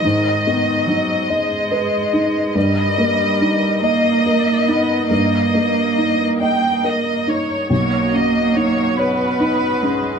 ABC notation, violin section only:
X:1
M:6/8
L:1/8
Q:3/8=47
K:D#phr
V:1 name="Violin section"
d6 | d3 d3 | d3 =g d c | c d c B3 |]